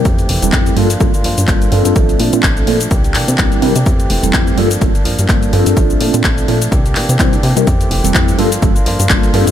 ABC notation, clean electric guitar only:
X:1
M:4/4
L:1/16
Q:"Swing 16ths" 1/4=126
K:Gdor
V:1 name="Clean electric guitar"
[E,A,CG]2 [E,A,CG]2 [CG]2 [F,B,DF]3 [B,DF] [F,B,DF]2 [F,B,DF]2 [F,B,DF] [B,DF] | F,2 [F,A,D]2 [F,A,D]2 [F,A,D]2 [E,B,DG] [B,DG] [E,B,DG]2 [E,B,G]2 [E,B,DG] [B,DG] | [E,A,CG]2 [E,A,CG]2 [E,A,CG]2 [F,B,D]3 [B,D] [F,B,D]2 [F,B,]2 [F,B,D] [B,D] | [F,A,D]2 [F,A,D]2 [F,A,D]2 [F,A,D]2 [E,B,DG] [B,DG] [E,B,DG]2 [E,B,DG]2 [E,B,DG] [B,DG] |
[E,A,CG]2 [E,A,CG]2 [E,A,CG]2 [F,B,DF]3 [B,DF] [F,B,DF]2 [F,B,DF]2 [F,B,DF] F |]